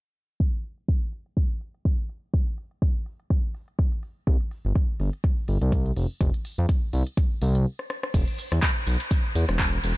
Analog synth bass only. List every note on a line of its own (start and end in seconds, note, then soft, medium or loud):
4.27 4.37 C2 loud
4.65 4.73 G1 medium
5.00 5.10 G1 medium
5.48 5.58 G1 medium
5.61 5.92 C2 medium
5.96 6.06 F1 medium
6.21 6.30 F1 loud
6.58 6.66 F2 medium
6.93 7.03 C2 medium
7.42 7.66 C2 loud
8.14 8.24 E1 loud
8.52 8.60 E2 medium
8.87 8.97 B1 medium
9.35 9.45 E2 medium
9.49 9.79 E1 medium
9.84 9.93 E1 medium